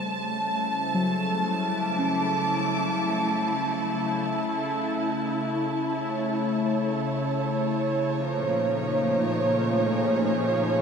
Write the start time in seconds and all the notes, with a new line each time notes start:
Already playing: C#3 G3 A3 C5 A5 C6
0.58 E4
0.94 F#3
1.69 D6
1.98 C#4
5.95 C#5
8.25 F3 A#5
8.36 A#2
8.52 D#4
9.81 G#4